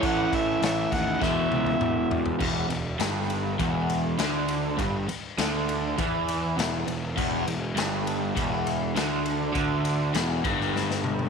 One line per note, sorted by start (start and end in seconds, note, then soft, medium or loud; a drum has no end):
0.00 0.26 A1 loud
0.00 1.19 A2 medium
0.00 1.20 E3 medium
0.00 1.22 A3 loud
0.00 kick loud
0.00 crash medium
0.06 0.37 F#5 loud
0.33 0.56 A1 medium
0.33 0.64 E5 loud
0.33 kick loud
0.33 crash medium
0.62 0.85 A1 medium
0.62 0.73 A4 medium
0.62 0.71 C#5 medium
0.62 0.95 E5 loud
0.62 snare loud
0.62 crash medium
0.92 1.15 D#2 medium
0.92 1.23 F#5 medium
0.92 kick loud
0.92 snare soft
0.92 crash medium
1.20 1.45 E1 loud
1.20 2.38 E2 medium
1.20 2.39 B2 loud
1.20 2.11 E5 medium
1.20 kick loud
1.20 snare medium
1.25 2.41 E3 loud
1.51 1.74 C#2 medium
1.51 high tom medium
1.67 high tom medium
1.80 2.04 E1 loud
1.80 mid tom loud
2.11 2.34 E2 loud
2.11 floor tom loud
2.26 floor tom loud
2.39 2.68 E1 loud
2.39 2.68 E2 loud
2.39 kick loud
2.39 crash loud
2.69 2.97 E1 medium
2.69 2.94 E2 medium
2.69 ride medium
2.99 3.55 G1 loud
2.99 3.58 G2 loud
2.99 snare loud
2.99 ride loud
3.30 ride medium
3.59 4.15 E1 loud
3.59 4.18 E2 loud
3.59 kick loud
3.59 ride loud
3.89 ride medium
4.18 4.74 D2 medium
4.18 4.78 D3 loud
4.18 snare loud
4.18 ride loud
4.48 ride medium
4.77 5.06 G1 medium
4.77 5.07 G2 loud
4.77 kick loud
4.77 ride loud
5.08 muted overdriven electric guitar stroke medium
5.08 muted picked electric bass stroke soft
5.08 ride medium
5.38 5.94 D2 loud
5.38 5.97 D3 loud
5.38 snare loud
5.38 ride loud
5.69 ride medium
5.98 6.54 E2 loud
5.98 6.56 E3 loud
5.98 kick loud
5.98 ride loud
6.28 ride medium
6.57 6.85 E1 loud
6.57 6.86 E2 loud
6.57 snare loud
6.57 ride loud
6.87 7.15 E1 medium
6.87 7.11 E2 medium
6.87 ride medium
7.17 7.45 E1 medium
7.17 7.46 E2 loud
7.17 kick loud
7.17 crash loud
7.46 7.74 E1 medium
7.46 7.71 E2 medium
7.46 ride medium
7.75 8.32 G1 loud
7.75 8.34 G2 loud
7.75 snare loud
7.75 ride loud
8.07 ride medium
8.35 8.92 E1 medium
8.35 8.94 E2 loud
8.35 kick loud
8.35 ride loud
8.67 ride medium
8.95 9.51 D2 loud
8.95 9.52 D3 loud
8.95 snare loud
8.95 ride loud
9.26 ride medium
9.53 10.10 D2 medium
9.53 10.13 D3 loud
9.53 kick loud
9.53 ride loud
9.85 ride medium
10.13 10.42 E1 medium
10.13 10.44 E2 loud
10.13 snare loud
10.13 ride loud
10.44 11.29 G1 loud
10.44 11.29 G2 loud
10.44 kick loud
10.44 ride medium
10.61 snare soft
10.76 snare medium
10.90 snare medium
11.04 high tom medium
11.19 high tom medium